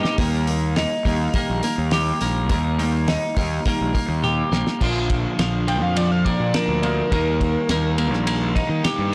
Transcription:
Already playing: D#3 G3 A#3 D#4
0.03 D#4 G4, snare
0.18 D#2 D#3 G3 A#3, kick, open hi-hat
0.47 D#3 G3, open hi-hat
0.76 D#3 G3 D#4, snare, open hi-hat
1.05 D#2 D#3 G3 A#3, kick, open hi-hat
1.34 D#3 G3 A#3, kick, open hi-hat
1.50 A#1
1.63 D#3 G3 A#3, open hi-hat
1.78 D#2
1.91 D#3 G3 G4, snare, open hi-hat
2.21 A#1 D#3 G3 A#3, open hi-hat
2.49 D#2 D#3 G3 A#3, kick, open hi-hat
2.79 D#3 G3 A#3, open hi-hat
3.08 D#3 G3 D#4, snare, open hi-hat
3.37 D#2 D#3 G3 A#3, kick, open hi-hat
3.66 D#3 G3 A#3, kick, open hi-hat
3.81 A#1
3.95 D#3 G3 A#3, kick, open hi-hat
4.09 D#2
4.23 D#3 G3 G4, high tom
4.52 A#1 D#3 G3 A#3, snare
4.67 snare
4.80 A#1 A#2 D3 F3 A#3 D4, kick, crash
5.10 kick, ride
5.39 A#1 F3, snare, ride
5.68 F3 G5, ride
5.82 F2 F5
5.97 F3 D5, ride
6.12 F5
6.25 A#3 D5, kick, ride
6.40 A#2
6.54 D4 A#4, snare, ride
6.68 D2
6.82 A#2 D3 F3 A#3 D4, ride
7.11 D#2 D#3 G3 A#3 D#4, kick, ride
7.41 kick, ride
7.69 D#2 A#3, snare, ride
7.98 A#3, ride
8.12 A#1, snare
8.27 A#3, ride
8.55 D#4, kick, ride
8.69 D#3
8.84 G4, snare, ride
8.98 G2

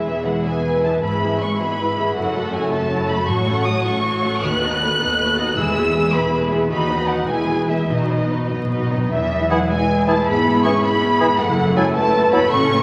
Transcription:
Already playing: E1 E2 E3 G#4 B4 E5 B5
0.08 E3 B3 E4 G#4 E5
0.27 G#3 E4 G#4 B4 F#5
0.45 E3 B3 G#4 B4 E5 G#5
0.64 G#3 E4 G#4 B4
0.83 E3 B3 E4 G#4 E5 A5
1.02 G#1 G#2 G#3 E4 G#4 B4 B5
1.21 E3 G#3 B3 G#4 E5
1.40 G#3 E4 B4 C#6
1.59 E3 B3 F#4 G#4 E5 B5
1.78 G#3 E4 B4
1.97 E3 G#3 B3 G#4 E5
2.16 F#1 F#2 F#3 E4 F#4 A4 C#5 F#5
2.35 A3 F#4 A4 E5
2.53 F#3 E4 F#4 C#5 G#5
2.71 A3 F#4 A4 E5 A5
2.91 F#3 E4 F#4 C#5
3.09 A3 F#4 A4 E5 B5
3.27 A1 A2 F#3 F#4 C#5 C#6
3.47 A3 C#4 A4 F#5
3.65 F#3 F#4 C#5 D#6
3.83 A3 C#4 A4 F#5 C#6
4.02 F#3 F#4 C#5
4.23 A3 C#4 A4 F#5
4.42 D#2 D#3 A3 F#4 B4 F#6
4.62 B3 D#4 A4 B4 D#5
4.81 A3 F#4 A4 B4
5.00 D#2 B3 D#4 A4 B4 D#5
5.18 A3 F#4 A4 B4
5.38 B3 D#4 F#4 A4 D#5
5.56 E1 E2 E3 G#3 E4 G#4 B4 E6
5.76 B3 E4 G#4 E5
5.95 G#3 E4 G#4 B4
6.14 E1 E2 B3 E4 G#4 B4 E5 B5
6.32 G#3 E4 G#4 A4 B4
6.51 B3 E4 G#4 E5
6.70 D#2 D#3 D#4 F#4 B4 D#5 B5
6.89 B3 D#4 B4 D#5
7.08 D#4 F#4 B4 D#5 F#5
7.27 E1 E2 E3 G#3 E4 G#4 B4 G#5
7.48 B3 E4 G#4 B4
7.68 G#3 E4 G#4 B4 E5
7.88 B1 B2 D#4 F#4 B4 D#5
8.05 B2
8.09 B2 B3 D#4 B4 D#5
8.20 B2
8.27 B2 D#4 F#4 B4 D#5
8.35 B2
8.43 B2
8.50 B1 B2 B3 D#4 F#4 B4 D#5
8.58 B2
8.66 B2
8.70 B2 D#4 F#4 B4 D#5
8.81 B2
8.89 B2 B3 D#4 B4 D#5
8.97 B2
9.11 E1 E2 E3 G#3 E4 E5
9.22 B2
9.32 B3
9.41 E4
9.51 E3 F#3 E4 G#4 F#5
9.61 B4
9.70 G#3 B4 E5 G#5
9.80 G#5
9.90 E5
9.99 B4
10.08 E3 A3 E4 G#4 A5
10.18 E4
10.27 G#1 G#2 B3 G#4 B5
10.36 G#3
10.46 B3
10.55 E4
10.64 E3 C#4 E4 G#4 C#6
10.73 B4
10.83 B3 E5 B5
10.93 G#5
11.02 E5
11.10 B4
11.20 E3 E4 G#4
11.29 E4
11.38 F#1 F#2 F#3 A3 E4 A4 F#5
11.48 C#3
11.58 A3
11.67 E4
11.76 F#3 G#3 E4 A4 G#5
11.86 E4
11.95 A3 B4 E5 A5
12.04 A5
12.14 E5
12.23 A4
12.32 F#3 B3 E4 A4 B5
12.42 A3
12.51 A1 A2 C#4 F#4 A4 C#6
12.61 F#3
12.71 A3

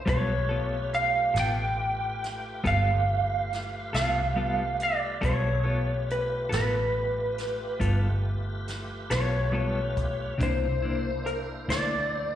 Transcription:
0.06 B1 G3 A3 B3 F4 G4 A4 B4 C#5, kick, closed hi-hat
0.49 B3 F4 A4
0.94 F5, closed hi-hat
1.34 A1 B3 F4 A4, snare, closed hi-hat
1.40 G5
2.24 snare, closed hi-hat
2.64 G1 G3 B3 F4 A4 F5, kick, closed hi-hat
3.53 snare, closed hi-hat
3.93 C2 B3 F4 A4 F5, snare, closed hi-hat
4.36 G3 B3 F4 A4
4.80 D5, closed hi-hat
5.21 B1 G3 A#3 B3 F4 G#4 A4 C#5, kick, closed hi-hat
5.64 A3 B3 F4 G4 A4 B4
6.10 B4, closed hi-hat
6.49 A1 B3 F4 A4 B4, closed hi-hat
6.54 snare
7.38 snare, closed hi-hat
7.80 G1 G3 B3 F4 A4, kick, closed hi-hat
8.68 snare, closed hi-hat
9.10 B1 B3 F4 A4 C#5, snare, closed hi-hat
9.52 G3 B3 F4 A4
9.97 kick, closed hi-hat
10.38 C2 C3 A#3 D4 E4 C5, kick, closed hi-hat
10.43 C5
10.82 A#3 D4 E4
11.26 A#4, closed hi-hat
11.68 D2 A#3 D4 E4 D5, snare, closed hi-hat

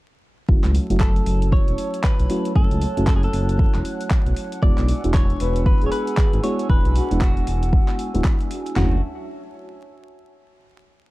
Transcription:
0.49 F#1 F#3 A3 C#4 E4 F#4 C#5 F#5 A5 E6, kick
0.64 C#2, clap, closed hi-hat
0.75 open hi-hat
0.90 F#1 F#3 A3 C#4 E4 F#4, closed hi-hat
1.00 A4, kick, clap
1.16 closed hi-hat
1.26 F#1, open hi-hat
1.42 closed hi-hat
1.52 C#5, kick
1.68 E1, closed hi-hat
1.78 open hi-hat
1.94 closed hi-hat
2.04 B4, kick, clap
2.20 B1, closed hi-hat
2.30 F#3 A3 C#4 E4 F#4, open hi-hat
2.45 closed hi-hat
2.55 F#1 F#3 A3 C#4 E4 A4 F#6, kick
2.71 C#2, closed hi-hat
2.82 open hi-hat
2.97 F#1 F#3 A3 C#4 E4 F#4, closed hi-hat
3.07 A4, kick, clap
3.16 G#4
3.23 A4, closed hi-hat
3.33 F#1, open hi-hat
3.49 closed hi-hat
3.59 kick
3.74 E1, clap, closed hi-hat
3.85 open hi-hat
4.01 closed hi-hat
4.10 kick, clap
4.26 B1, closed hi-hat
4.37 open hi-hat
4.52 closed hi-hat
4.63 E1 G#3 B3 D4 E4 F#4 D5 G#5 E6, kick
4.78 B1, clap, closed hi-hat
4.88 open hi-hat
5.04 E1 G#3 B3 D4 E4 F#4, closed hi-hat
5.14 C#5, kick, clap
5.30 closed hi-hat
5.40 E1 B4, open hi-hat
5.56 closed hi-hat
5.66 B4, kick
5.82 D1 G#4, closed hi-hat
5.86 C#5
5.92 B4, open hi-hat
6.07 closed hi-hat
6.17 kick, clap
6.33 G#1, closed hi-hat
6.44 G#3 B3 D4 E4 F#4 C#5, open hi-hat
6.59 closed hi-hat
6.69 E1 G#3 D4 E4 G#4 B4, kick
6.85 B1, closed hi-hat
6.95 F#4, open hi-hat
7.11 E1 G#3 B3 D4 E4 F#4, closed hi-hat
7.21 F#4, kick, clap
7.37 closed hi-hat
7.47 E1, open hi-hat
7.63 closed hi-hat
7.73 kick
7.88 clap, closed hi-hat
7.99 open hi-hat
8.14 D1 G#3 B3 D4 E4 F#4, closed hi-hat
8.24 kick, clap
8.40 closed hi-hat
8.51 open hi-hat
8.66 closed hi-hat
8.76 F#1 F#3 A3 C#4 E4 F#4 C#5 E5 A5, snare, clap, floor tom

